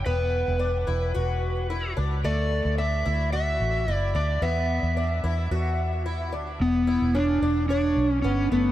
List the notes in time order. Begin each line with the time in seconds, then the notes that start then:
0.06 E1 B3 B4
0.48 E1
0.59 D4
0.87 E1 E4
1.15 E1 F#4
1.70 E4
1.97 C#2 D4
2.24 D2 A3 D5
2.65 D2
2.78 D4 E5
3.05 D2 E4
3.33 F#4 E5
3.60 A1
3.88 F#1 E4
3.94 D5
4.15 D2 D4 D5
4.42 E2 B3 E5
4.83 E2
4.97 D4
5.24 E2 E4
5.51 E2 F#4
6.06 E4
6.32 D2 D4
6.60 E1 B3
6.87 E4
7.02 E1
7.15 C#4 D4
7.42 E1 D4
7.69 D4 C#5
7.97 B1
8.10 C#4
8.22 G1 B3 C#4
8.51 F#1 A3 B3